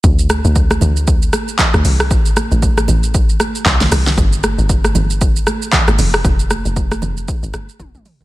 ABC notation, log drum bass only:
X:1
M:4/4
L:1/16
Q:"Swing 16ths" 1/4=116
K:Cmix
V:1 name="Log drum bass" clef=bass
D,,3 D,,3 D,,4 z3 D,, C,,2 | A,,,3 A,,,3 A,,,4 z2 C,,2 C,,2 | G,,,3 G,,,3 G,,,4 z3 G,,, F,,,2 | F,,,3 F,,,3 F,,,2 z G,,, G,,, z F,,, A,,, z G,,, |]